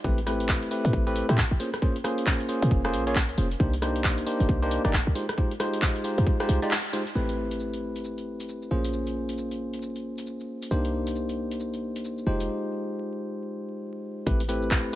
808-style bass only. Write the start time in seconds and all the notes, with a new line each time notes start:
0.04 A1
0.85 A2
0.93 A1
1.29 A2
1.51 A1
2.62 A#2
2.71 F1
2.93 A#1
3.29 C#2
3.38 F1
3.60 C2
4.40 G1
4.49 C2
4.85 G1
5.07 C2
6.18 F2
6.49 C2
7.16 A1
8.71 A#1
10.71 C2
12.27 F1
14.27 A1